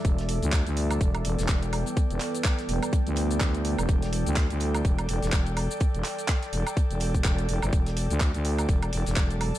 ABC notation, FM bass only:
X:1
M:4/4
L:1/16
Q:"Swing 16ths" 1/4=125
K:Em
V:1 name="FM bass" clef=bass
E,,,3 D,,2 D,,3 E,,,2 E,,, E,,, E,,,3 z | z E,,, z4 E,,, z2 D,,3 D,,3 E,,, | E,,,3 D,,2 D,,3 E,,,2 E,,, E,,, E,,,3 z | z E,,, z4 E,,, z2 E,,,3 E,,,2 E,,, F,,, |
E,,,3 D,,2 D,,3 E,,,2 E,,, E,,, E,,,3 z |]